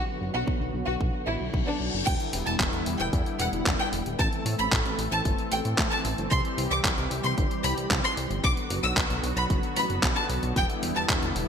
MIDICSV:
0, 0, Header, 1, 6, 480
1, 0, Start_track
1, 0, Key_signature, 1, "minor"
1, 0, Tempo, 530973
1, 1869, Time_signature, 4, 2, 24, 8
1, 10379, End_track
2, 0, Start_track
2, 0, Title_t, "Violin section"
2, 0, Program_c, 0, 48
2, 312, Note_on_c, 0, 66, 92
2, 384, Note_off_c, 0, 66, 0
2, 788, Note_on_c, 0, 66, 90
2, 860, Note_off_c, 0, 66, 0
2, 1147, Note_on_c, 0, 64, 91
2, 1219, Note_off_c, 0, 64, 0
2, 1507, Note_on_c, 0, 62, 91
2, 1580, Note_off_c, 0, 62, 0
2, 1867, Note_on_c, 0, 79, 101
2, 1939, Note_off_c, 0, 79, 0
2, 2227, Note_on_c, 0, 81, 94
2, 2300, Note_off_c, 0, 81, 0
2, 2709, Note_on_c, 0, 79, 95
2, 2781, Note_off_c, 0, 79, 0
2, 3071, Note_on_c, 0, 78, 93
2, 3144, Note_off_c, 0, 78, 0
2, 3433, Note_on_c, 0, 79, 100
2, 3505, Note_off_c, 0, 79, 0
2, 3789, Note_on_c, 0, 81, 104
2, 3862, Note_off_c, 0, 81, 0
2, 4151, Note_on_c, 0, 83, 94
2, 4223, Note_off_c, 0, 83, 0
2, 4630, Note_on_c, 0, 81, 93
2, 4702, Note_off_c, 0, 81, 0
2, 4989, Note_on_c, 0, 79, 98
2, 5061, Note_off_c, 0, 79, 0
2, 5350, Note_on_c, 0, 81, 100
2, 5422, Note_off_c, 0, 81, 0
2, 5710, Note_on_c, 0, 84, 103
2, 5783, Note_off_c, 0, 84, 0
2, 6069, Note_on_c, 0, 86, 92
2, 6141, Note_off_c, 0, 86, 0
2, 6550, Note_on_c, 0, 84, 93
2, 6622, Note_off_c, 0, 84, 0
2, 6907, Note_on_c, 0, 83, 96
2, 6979, Note_off_c, 0, 83, 0
2, 7268, Note_on_c, 0, 84, 99
2, 7340, Note_off_c, 0, 84, 0
2, 7628, Note_on_c, 0, 86, 100
2, 7701, Note_off_c, 0, 86, 0
2, 7989, Note_on_c, 0, 88, 95
2, 8062, Note_off_c, 0, 88, 0
2, 8469, Note_on_c, 0, 83, 92
2, 8541, Note_off_c, 0, 83, 0
2, 8830, Note_on_c, 0, 83, 95
2, 8903, Note_off_c, 0, 83, 0
2, 9190, Note_on_c, 0, 81, 94
2, 9263, Note_off_c, 0, 81, 0
2, 9548, Note_on_c, 0, 79, 101
2, 9620, Note_off_c, 0, 79, 0
2, 9910, Note_on_c, 0, 81, 95
2, 9983, Note_off_c, 0, 81, 0
2, 10379, End_track
3, 0, Start_track
3, 0, Title_t, "Analog synth pad"
3, 0, Program_c, 1, 89
3, 0, Note_on_c, 1, 50, 79
3, 0, Note_on_c, 1, 54, 74
3, 0, Note_on_c, 1, 59, 71
3, 0, Note_on_c, 1, 66, 88
3, 1849, Note_off_c, 1, 50, 0
3, 1849, Note_off_c, 1, 59, 0
3, 1850, Note_off_c, 1, 54, 0
3, 1850, Note_off_c, 1, 66, 0
3, 1869, Note_on_c, 1, 50, 84
3, 1870, Note_on_c, 1, 64, 91
3, 1871, Note_on_c, 1, 55, 76
3, 1871, Note_on_c, 1, 59, 75
3, 3770, Note_off_c, 1, 50, 0
3, 3770, Note_off_c, 1, 59, 0
3, 3770, Note_off_c, 1, 64, 0
3, 3771, Note_off_c, 1, 55, 0
3, 3790, Note_on_c, 1, 57, 76
3, 3790, Note_on_c, 1, 60, 77
3, 3791, Note_on_c, 1, 52, 85
3, 3791, Note_on_c, 1, 69, 91
3, 5690, Note_off_c, 1, 57, 0
3, 5691, Note_off_c, 1, 69, 0
3, 5709, Note_on_c, 1, 55, 77
3, 5709, Note_on_c, 1, 67, 89
3, 7593, Note_off_c, 1, 60, 0
3, 7594, Note_off_c, 1, 52, 0
3, 7610, Note_off_c, 1, 55, 0
3, 7610, Note_off_c, 1, 67, 0
3, 7630, Note_on_c, 1, 54, 78
3, 7631, Note_on_c, 1, 50, 83
3, 7631, Note_on_c, 1, 59, 76
3, 7631, Note_on_c, 1, 66, 92
3, 9530, Note_off_c, 1, 54, 0
3, 9531, Note_off_c, 1, 66, 0
3, 9546, Note_on_c, 1, 55, 75
3, 9546, Note_on_c, 1, 64, 90
3, 10379, Note_off_c, 1, 50, 0
3, 10379, Note_off_c, 1, 55, 0
3, 10379, Note_off_c, 1, 59, 0
3, 10379, Note_off_c, 1, 64, 0
3, 10379, End_track
4, 0, Start_track
4, 0, Title_t, "Analog synth bass"
4, 0, Program_c, 2, 38
4, 191, Note_on_c, 2, 30, 92
4, 277, Note_off_c, 2, 30, 0
4, 310, Note_on_c, 2, 35, 83
4, 396, Note_off_c, 2, 35, 0
4, 429, Note_on_c, 2, 35, 101
4, 516, Note_off_c, 2, 35, 0
4, 549, Note_on_c, 2, 35, 75
4, 636, Note_off_c, 2, 35, 0
4, 669, Note_on_c, 2, 35, 93
4, 755, Note_off_c, 2, 35, 0
4, 789, Note_on_c, 2, 35, 79
4, 876, Note_off_c, 2, 35, 0
4, 910, Note_on_c, 2, 35, 99
4, 996, Note_off_c, 2, 35, 0
4, 1150, Note_on_c, 2, 33, 88
4, 1236, Note_off_c, 2, 33, 0
4, 1269, Note_on_c, 2, 35, 79
4, 1356, Note_off_c, 2, 35, 0
4, 1389, Note_on_c, 2, 35, 102
4, 1476, Note_off_c, 2, 35, 0
4, 1629, Note_on_c, 2, 35, 90
4, 1716, Note_off_c, 2, 35, 0
4, 1749, Note_on_c, 2, 30, 83
4, 1835, Note_off_c, 2, 30, 0
4, 1869, Note_on_c, 2, 28, 105
4, 1956, Note_off_c, 2, 28, 0
4, 2109, Note_on_c, 2, 28, 94
4, 2196, Note_off_c, 2, 28, 0
4, 2230, Note_on_c, 2, 28, 85
4, 2316, Note_off_c, 2, 28, 0
4, 2350, Note_on_c, 2, 28, 107
4, 2436, Note_off_c, 2, 28, 0
4, 2469, Note_on_c, 2, 28, 80
4, 2556, Note_off_c, 2, 28, 0
4, 2590, Note_on_c, 2, 28, 96
4, 2676, Note_off_c, 2, 28, 0
4, 2710, Note_on_c, 2, 28, 81
4, 2796, Note_off_c, 2, 28, 0
4, 2830, Note_on_c, 2, 40, 107
4, 2916, Note_off_c, 2, 40, 0
4, 3069, Note_on_c, 2, 28, 94
4, 3156, Note_off_c, 2, 28, 0
4, 3189, Note_on_c, 2, 28, 78
4, 3276, Note_off_c, 2, 28, 0
4, 3310, Note_on_c, 2, 28, 106
4, 3396, Note_off_c, 2, 28, 0
4, 3549, Note_on_c, 2, 28, 95
4, 3636, Note_off_c, 2, 28, 0
4, 3670, Note_on_c, 2, 26, 84
4, 3756, Note_off_c, 2, 26, 0
4, 3790, Note_on_c, 2, 33, 103
4, 3876, Note_off_c, 2, 33, 0
4, 4029, Note_on_c, 2, 45, 96
4, 4116, Note_off_c, 2, 45, 0
4, 4149, Note_on_c, 2, 33, 85
4, 4236, Note_off_c, 2, 33, 0
4, 4270, Note_on_c, 2, 33, 102
4, 4356, Note_off_c, 2, 33, 0
4, 4389, Note_on_c, 2, 33, 81
4, 4476, Note_off_c, 2, 33, 0
4, 4508, Note_on_c, 2, 33, 96
4, 4595, Note_off_c, 2, 33, 0
4, 4629, Note_on_c, 2, 33, 83
4, 4716, Note_off_c, 2, 33, 0
4, 4749, Note_on_c, 2, 31, 102
4, 4836, Note_off_c, 2, 31, 0
4, 4989, Note_on_c, 2, 33, 96
4, 5076, Note_off_c, 2, 33, 0
4, 5109, Note_on_c, 2, 45, 77
4, 5196, Note_off_c, 2, 45, 0
4, 5230, Note_on_c, 2, 45, 110
4, 5316, Note_off_c, 2, 45, 0
4, 5468, Note_on_c, 2, 33, 96
4, 5555, Note_off_c, 2, 33, 0
4, 5589, Note_on_c, 2, 31, 87
4, 5676, Note_off_c, 2, 31, 0
4, 5708, Note_on_c, 2, 36, 101
4, 5795, Note_off_c, 2, 36, 0
4, 5947, Note_on_c, 2, 36, 93
4, 6034, Note_off_c, 2, 36, 0
4, 6066, Note_on_c, 2, 36, 86
4, 6154, Note_off_c, 2, 36, 0
4, 6189, Note_on_c, 2, 36, 104
4, 6275, Note_off_c, 2, 36, 0
4, 6307, Note_on_c, 2, 36, 81
4, 6395, Note_off_c, 2, 36, 0
4, 6425, Note_on_c, 2, 36, 97
4, 6514, Note_off_c, 2, 36, 0
4, 6546, Note_on_c, 2, 36, 82
4, 6634, Note_off_c, 2, 36, 0
4, 6668, Note_on_c, 2, 31, 109
4, 6755, Note_off_c, 2, 31, 0
4, 6907, Note_on_c, 2, 36, 96
4, 6995, Note_off_c, 2, 36, 0
4, 7027, Note_on_c, 2, 36, 81
4, 7115, Note_off_c, 2, 36, 0
4, 7149, Note_on_c, 2, 36, 106
4, 7236, Note_off_c, 2, 36, 0
4, 7386, Note_on_c, 2, 36, 95
4, 7474, Note_off_c, 2, 36, 0
4, 7508, Note_on_c, 2, 31, 87
4, 7595, Note_off_c, 2, 31, 0
4, 7628, Note_on_c, 2, 35, 105
4, 7715, Note_off_c, 2, 35, 0
4, 7868, Note_on_c, 2, 30, 99
4, 7955, Note_off_c, 2, 30, 0
4, 7987, Note_on_c, 2, 35, 87
4, 8075, Note_off_c, 2, 35, 0
4, 8109, Note_on_c, 2, 35, 104
4, 8196, Note_off_c, 2, 35, 0
4, 8227, Note_on_c, 2, 35, 79
4, 8315, Note_off_c, 2, 35, 0
4, 8347, Note_on_c, 2, 35, 98
4, 8435, Note_off_c, 2, 35, 0
4, 8467, Note_on_c, 2, 35, 83
4, 8555, Note_off_c, 2, 35, 0
4, 8589, Note_on_c, 2, 30, 107
4, 8676, Note_off_c, 2, 30, 0
4, 8828, Note_on_c, 2, 33, 97
4, 8915, Note_off_c, 2, 33, 0
4, 8949, Note_on_c, 2, 30, 81
4, 9035, Note_off_c, 2, 30, 0
4, 9068, Note_on_c, 2, 35, 105
4, 9155, Note_off_c, 2, 35, 0
4, 9308, Note_on_c, 2, 35, 94
4, 9395, Note_off_c, 2, 35, 0
4, 9428, Note_on_c, 2, 35, 84
4, 9515, Note_off_c, 2, 35, 0
4, 9548, Note_on_c, 2, 28, 104
4, 9635, Note_off_c, 2, 28, 0
4, 9788, Note_on_c, 2, 28, 95
4, 9875, Note_off_c, 2, 28, 0
4, 9909, Note_on_c, 2, 28, 84
4, 9996, Note_off_c, 2, 28, 0
4, 10028, Note_on_c, 2, 28, 103
4, 10115, Note_off_c, 2, 28, 0
4, 10147, Note_on_c, 2, 28, 78
4, 10235, Note_off_c, 2, 28, 0
4, 10268, Note_on_c, 2, 28, 95
4, 10355, Note_off_c, 2, 28, 0
4, 10379, End_track
5, 0, Start_track
5, 0, Title_t, "Reverse cymbal"
5, 0, Program_c, 3, 119
5, 909, Note_on_c, 3, 60, 73
5, 1869, Note_off_c, 3, 60, 0
5, 10379, End_track
6, 0, Start_track
6, 0, Title_t, "Drums"
6, 429, Note_on_c, 9, 36, 111
6, 520, Note_off_c, 9, 36, 0
6, 910, Note_on_c, 9, 36, 111
6, 1000, Note_off_c, 9, 36, 0
6, 1390, Note_on_c, 9, 36, 108
6, 1480, Note_off_c, 9, 36, 0
6, 1870, Note_on_c, 9, 36, 121
6, 1870, Note_on_c, 9, 42, 69
6, 1870, Note_on_c, 9, 49, 112
6, 1960, Note_off_c, 9, 36, 0
6, 1960, Note_off_c, 9, 42, 0
6, 1960, Note_off_c, 9, 49, 0
6, 1989, Note_on_c, 9, 42, 42
6, 2080, Note_off_c, 9, 42, 0
6, 2108, Note_on_c, 9, 46, 109
6, 2198, Note_off_c, 9, 46, 0
6, 2229, Note_on_c, 9, 42, 41
6, 2320, Note_off_c, 9, 42, 0
6, 2349, Note_on_c, 9, 39, 121
6, 2349, Note_on_c, 9, 42, 69
6, 2350, Note_on_c, 9, 36, 123
6, 2439, Note_off_c, 9, 39, 0
6, 2439, Note_off_c, 9, 42, 0
6, 2440, Note_off_c, 9, 36, 0
6, 2468, Note_on_c, 9, 42, 41
6, 2559, Note_off_c, 9, 42, 0
6, 2588, Note_on_c, 9, 46, 113
6, 2679, Note_off_c, 9, 46, 0
6, 2709, Note_on_c, 9, 42, 43
6, 2799, Note_off_c, 9, 42, 0
6, 2830, Note_on_c, 9, 36, 123
6, 2830, Note_on_c, 9, 42, 69
6, 2920, Note_off_c, 9, 36, 0
6, 2920, Note_off_c, 9, 42, 0
6, 2950, Note_on_c, 9, 42, 42
6, 3040, Note_off_c, 9, 42, 0
6, 3070, Note_on_c, 9, 46, 113
6, 3160, Note_off_c, 9, 46, 0
6, 3191, Note_on_c, 9, 42, 41
6, 3281, Note_off_c, 9, 42, 0
6, 3310, Note_on_c, 9, 36, 120
6, 3311, Note_on_c, 9, 39, 119
6, 3311, Note_on_c, 9, 42, 69
6, 3400, Note_off_c, 9, 36, 0
6, 3402, Note_off_c, 9, 39, 0
6, 3402, Note_off_c, 9, 42, 0
6, 3432, Note_on_c, 9, 42, 42
6, 3522, Note_off_c, 9, 42, 0
6, 3551, Note_on_c, 9, 46, 110
6, 3641, Note_off_c, 9, 46, 0
6, 3671, Note_on_c, 9, 42, 43
6, 3761, Note_off_c, 9, 42, 0
6, 3790, Note_on_c, 9, 36, 123
6, 3791, Note_on_c, 9, 42, 72
6, 3880, Note_off_c, 9, 36, 0
6, 3882, Note_off_c, 9, 42, 0
6, 3911, Note_on_c, 9, 42, 42
6, 4001, Note_off_c, 9, 42, 0
6, 4031, Note_on_c, 9, 46, 105
6, 4121, Note_off_c, 9, 46, 0
6, 4150, Note_on_c, 9, 42, 43
6, 4240, Note_off_c, 9, 42, 0
6, 4270, Note_on_c, 9, 36, 127
6, 4270, Note_on_c, 9, 39, 126
6, 4270, Note_on_c, 9, 42, 70
6, 4360, Note_off_c, 9, 36, 0
6, 4360, Note_off_c, 9, 39, 0
6, 4360, Note_off_c, 9, 42, 0
6, 4389, Note_on_c, 9, 42, 40
6, 4479, Note_off_c, 9, 42, 0
6, 4508, Note_on_c, 9, 46, 107
6, 4599, Note_off_c, 9, 46, 0
6, 4629, Note_on_c, 9, 42, 44
6, 4719, Note_off_c, 9, 42, 0
6, 4749, Note_on_c, 9, 36, 123
6, 4749, Note_on_c, 9, 42, 71
6, 4839, Note_off_c, 9, 42, 0
6, 4840, Note_off_c, 9, 36, 0
6, 4868, Note_on_c, 9, 42, 42
6, 4958, Note_off_c, 9, 42, 0
6, 4987, Note_on_c, 9, 46, 107
6, 5077, Note_off_c, 9, 46, 0
6, 5108, Note_on_c, 9, 42, 41
6, 5198, Note_off_c, 9, 42, 0
6, 5227, Note_on_c, 9, 39, 122
6, 5227, Note_on_c, 9, 42, 69
6, 5229, Note_on_c, 9, 36, 127
6, 5317, Note_off_c, 9, 39, 0
6, 5317, Note_off_c, 9, 42, 0
6, 5319, Note_off_c, 9, 36, 0
6, 5348, Note_on_c, 9, 42, 42
6, 5439, Note_off_c, 9, 42, 0
6, 5468, Note_on_c, 9, 46, 110
6, 5558, Note_off_c, 9, 46, 0
6, 5589, Note_on_c, 9, 42, 43
6, 5679, Note_off_c, 9, 42, 0
6, 5708, Note_on_c, 9, 36, 127
6, 5709, Note_on_c, 9, 42, 69
6, 5799, Note_off_c, 9, 36, 0
6, 5800, Note_off_c, 9, 42, 0
6, 5830, Note_on_c, 9, 42, 41
6, 5920, Note_off_c, 9, 42, 0
6, 5950, Note_on_c, 9, 46, 101
6, 6040, Note_off_c, 9, 46, 0
6, 6070, Note_on_c, 9, 42, 42
6, 6160, Note_off_c, 9, 42, 0
6, 6189, Note_on_c, 9, 36, 127
6, 6189, Note_on_c, 9, 39, 126
6, 6189, Note_on_c, 9, 42, 70
6, 6279, Note_off_c, 9, 36, 0
6, 6279, Note_off_c, 9, 39, 0
6, 6279, Note_off_c, 9, 42, 0
6, 6309, Note_on_c, 9, 42, 41
6, 6399, Note_off_c, 9, 42, 0
6, 6428, Note_on_c, 9, 46, 104
6, 6519, Note_off_c, 9, 46, 0
6, 6549, Note_on_c, 9, 42, 43
6, 6639, Note_off_c, 9, 42, 0
6, 6669, Note_on_c, 9, 36, 127
6, 6669, Note_on_c, 9, 42, 68
6, 6759, Note_off_c, 9, 36, 0
6, 6759, Note_off_c, 9, 42, 0
6, 6790, Note_on_c, 9, 42, 41
6, 6880, Note_off_c, 9, 42, 0
6, 6908, Note_on_c, 9, 46, 109
6, 6999, Note_off_c, 9, 46, 0
6, 7030, Note_on_c, 9, 42, 41
6, 7120, Note_off_c, 9, 42, 0
6, 7149, Note_on_c, 9, 36, 127
6, 7149, Note_on_c, 9, 39, 124
6, 7149, Note_on_c, 9, 42, 67
6, 7239, Note_off_c, 9, 36, 0
6, 7239, Note_off_c, 9, 39, 0
6, 7239, Note_off_c, 9, 42, 0
6, 7270, Note_on_c, 9, 42, 43
6, 7360, Note_off_c, 9, 42, 0
6, 7389, Note_on_c, 9, 46, 104
6, 7479, Note_off_c, 9, 46, 0
6, 7509, Note_on_c, 9, 42, 42
6, 7599, Note_off_c, 9, 42, 0
6, 7628, Note_on_c, 9, 36, 126
6, 7628, Note_on_c, 9, 42, 67
6, 7718, Note_off_c, 9, 42, 0
6, 7719, Note_off_c, 9, 36, 0
6, 7749, Note_on_c, 9, 42, 42
6, 7839, Note_off_c, 9, 42, 0
6, 7868, Note_on_c, 9, 46, 103
6, 7959, Note_off_c, 9, 46, 0
6, 7987, Note_on_c, 9, 42, 39
6, 8077, Note_off_c, 9, 42, 0
6, 8108, Note_on_c, 9, 39, 126
6, 8108, Note_on_c, 9, 42, 67
6, 8109, Note_on_c, 9, 36, 127
6, 8199, Note_off_c, 9, 36, 0
6, 8199, Note_off_c, 9, 39, 0
6, 8199, Note_off_c, 9, 42, 0
6, 8228, Note_on_c, 9, 42, 39
6, 8319, Note_off_c, 9, 42, 0
6, 8349, Note_on_c, 9, 46, 105
6, 8440, Note_off_c, 9, 46, 0
6, 8469, Note_on_c, 9, 42, 40
6, 8560, Note_off_c, 9, 42, 0
6, 8589, Note_on_c, 9, 36, 125
6, 8589, Note_on_c, 9, 42, 68
6, 8679, Note_off_c, 9, 36, 0
6, 8679, Note_off_c, 9, 42, 0
6, 8708, Note_on_c, 9, 42, 39
6, 8798, Note_off_c, 9, 42, 0
6, 8827, Note_on_c, 9, 46, 103
6, 8918, Note_off_c, 9, 46, 0
6, 8948, Note_on_c, 9, 42, 41
6, 9039, Note_off_c, 9, 42, 0
6, 9068, Note_on_c, 9, 36, 127
6, 9068, Note_on_c, 9, 39, 127
6, 9068, Note_on_c, 9, 42, 67
6, 9159, Note_off_c, 9, 36, 0
6, 9159, Note_off_c, 9, 39, 0
6, 9159, Note_off_c, 9, 42, 0
6, 9188, Note_on_c, 9, 42, 39
6, 9279, Note_off_c, 9, 42, 0
6, 9307, Note_on_c, 9, 46, 102
6, 9398, Note_off_c, 9, 46, 0
6, 9427, Note_on_c, 9, 42, 42
6, 9518, Note_off_c, 9, 42, 0
6, 9548, Note_on_c, 9, 42, 66
6, 9549, Note_on_c, 9, 36, 123
6, 9639, Note_off_c, 9, 36, 0
6, 9639, Note_off_c, 9, 42, 0
6, 9669, Note_on_c, 9, 42, 38
6, 9760, Note_off_c, 9, 42, 0
6, 9789, Note_on_c, 9, 46, 103
6, 9879, Note_off_c, 9, 46, 0
6, 9908, Note_on_c, 9, 42, 40
6, 9999, Note_off_c, 9, 42, 0
6, 10028, Note_on_c, 9, 39, 125
6, 10028, Note_on_c, 9, 42, 63
6, 10029, Note_on_c, 9, 36, 123
6, 10119, Note_off_c, 9, 36, 0
6, 10119, Note_off_c, 9, 39, 0
6, 10119, Note_off_c, 9, 42, 0
6, 10148, Note_on_c, 9, 42, 38
6, 10238, Note_off_c, 9, 42, 0
6, 10268, Note_on_c, 9, 46, 103
6, 10358, Note_off_c, 9, 46, 0
6, 10379, End_track
0, 0, End_of_file